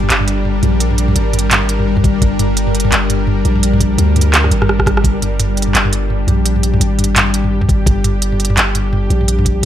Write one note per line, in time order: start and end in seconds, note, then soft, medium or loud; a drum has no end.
0.00 9.65 G3 medium
0.00 9.65 D4 medium
0.00 5.03 A#4 medium
0.00 mid tom medium
0.10 0.62 G1 loud
0.10 clap loud
0.10 closed hi-hat medium
0.20 mid tom medium
0.28 closed hi-hat medium
0.45 mid tom soft
0.63 1.15 A#1 loud
0.63 closed hi-hat soft
0.63 mid tom medium
0.80 closed hi-hat medium
0.91 mid tom soft
0.98 closed hi-hat medium
1.08 mid tom medium
1.16 2.20 G#1 loud
1.16 closed hi-hat medium
1.33 closed hi-hat soft
1.33 mid tom medium
1.39 closed hi-hat medium
1.51 clap loud
1.51 closed hi-hat medium
1.51 mid tom medium
1.69 closed hi-hat medium
1.79 mid tom medium
1.97 kick medium
1.97 mid tom medium
2.04 kick loud
2.04 closed hi-hat soft
2.22 2.91 G1 medium
2.22 kick loud
2.22 closed hi-hat medium
2.22 mid tom medium
2.39 closed hi-hat medium
2.39 mid tom medium
2.57 closed hi-hat medium
2.67 mid tom medium
2.75 closed hi-hat soft
2.80 closed hi-hat medium
2.85 mid tom medium
2.92 3.44 G1 medium
2.92 clap loud
2.92 closed hi-hat medium
3.10 closed hi-hat medium
3.10 mid tom medium
3.27 mid tom medium
3.45 3.97 A#1 loud
3.45 closed hi-hat soft
3.56 mid tom medium
3.63 closed hi-hat medium
3.73 mid tom medium
3.80 kick medium
3.80 closed hi-hat medium
3.98 4.50 D2 loud
3.98 closed hi-hat medium
3.98 mid tom medium
4.16 closed hi-hat soft
4.16 mid tom medium
4.21 closed hi-hat medium
4.34 cross-stick medium
4.34 clap loud
4.34 closed hi-hat medium
4.44 cross-stick medium
4.44 mid tom medium
4.51 5.03 G#1 loud
4.51 closed hi-hat medium
4.62 cross-stick medium
4.62 mid tom medium
4.69 cross-stick medium
4.79 kick medium
4.79 cross-stick medium
4.86 kick loud
4.86 cross-stick medium
4.86 closed hi-hat soft
4.86 mid tom medium
4.97 cross-stick medium
5.04 5.73 G1 loud
5.04 9.65 G4 medium
5.04 kick loud
5.04 closed hi-hat medium
5.22 closed hi-hat medium
5.22 mid tom medium
5.40 closed hi-hat medium
5.40 mid tom medium
5.57 closed hi-hat medium
5.62 closed hi-hat medium
5.67 mid tom medium
5.74 6.26 G1 loud
5.74 clap loud
5.74 closed hi-hat medium
5.85 mid tom medium
5.93 closed hi-hat medium
6.10 mid tom medium
6.27 6.79 A#1 medium
6.27 closed hi-hat soft
6.27 mid tom medium
6.46 closed hi-hat medium
6.56 mid tom medium
6.63 closed hi-hat medium
6.74 mid tom medium
6.80 7.85 G#1 medium
6.80 closed hi-hat medium
6.99 closed hi-hat medium
6.99 mid tom medium
7.04 closed hi-hat medium
7.16 clap loud
7.16 closed hi-hat medium
7.16 mid tom medium
7.34 closed hi-hat medium
7.44 mid tom medium
7.61 kick medium
7.61 mid tom medium
7.69 kick loud
7.69 closed hi-hat soft
7.86 8.56 G1 loud
7.86 kick loud
7.86 closed hi-hat medium
7.86 mid tom medium
8.04 closed hi-hat medium
8.04 mid tom medium
8.22 closed hi-hat medium
8.32 mid tom medium
8.40 closed hi-hat medium
8.45 closed hi-hat medium
8.50 mid tom medium
8.57 9.09 G1 loud
8.57 clap loud
8.57 closed hi-hat medium
8.75 closed hi-hat medium
8.75 mid tom medium
8.93 mid tom medium
9.10 9.62 A#1 loud
9.10 closed hi-hat soft
9.21 mid tom medium
9.28 closed hi-hat medium
9.39 mid tom medium
9.45 kick medium
9.45 closed hi-hat medium